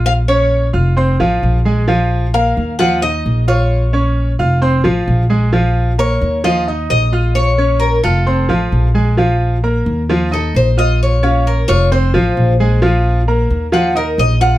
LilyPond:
<<
  \new Staff \with { instrumentName = "Cuban tres" } { \time 4/4 \key bes \minor \tempo 4 = 132 f''8 des''4 r2 r8 | r4 f''4 ges''8 ees''4 des''8~ | des''4. r2 r8 | r4 des''4 ees''4 ees''4 |
des''4 bes'8 a'2 r8 | r2 r8 a'8 c''8 ees''8 | des''8 f'8 bes'8 des''8 c''4. r8 | r2 ges''8 bes'8 ees''8 ges''8 | }
  \new Staff \with { instrumentName = "Grand piano" } { \time 4/4 \key bes \minor <f' f'' f'''>8 <des' des'' des'''>4 <f' f'' f'''>8 <c' c'' c'''>8 <f f' f''>4 <aes aes' aes''>8 | <f f' f''>4 <bes bes' bes''>4 <f f' f''>8 <ees' ees'' ees'''>4 <f' f'' f'''>8~ | <f' f'' f'''>8 <des' des'' des'''>4 <f' f'' f'''>8 <c' c'' c'''>8 <f f' f''>4 <aes aes' aes''>8 | <f f' f''>4 <bes bes' bes''>4 <f f' f''>8 <ees' ees'' ees'''>4 <f' f'' f'''>8~ |
<f' f'' f'''>8 <des' des'' des'''>4 <f' f'' f'''>8 <c' c'' c'''>8 <f f' f''>4 <aes aes' aes''>8 | <f f' f''>4 <bes bes' bes''>4 <f f' f''>8 <ees' ees'' ees'''>4 <f' f'' f'''>8~ | <f' f'' f'''>8 <des' des'' des'''>4 <f' f'' f'''>8 <c' c'' c'''>8 <f f' f''>4 <aes aes' aes''>8 | <f f' f''>4 <bes bes' bes''>4 <f f' f''>8 <ees' ees'' ees'''>4 <f' f'' f'''>8 | }
  \new Staff \with { instrumentName = "Upright bass" } { \clef bass \time 4/4 \key bes \minor bes,,4. f,,4 a,,8 bes,,4~ | bes,,4. ees,4. bes,,4~ | bes,,4. f,,4 a,,8 bes,,4~ | bes,,4. ees,4. bes,,4~ |
bes,,4. f,,4 a,,8 bes,,4~ | bes,,4. ees,4. bes,,4~ | bes,,4. f,,4 a,,8 bes,,4~ | bes,,4. ees,4. bes,,4 | }
>>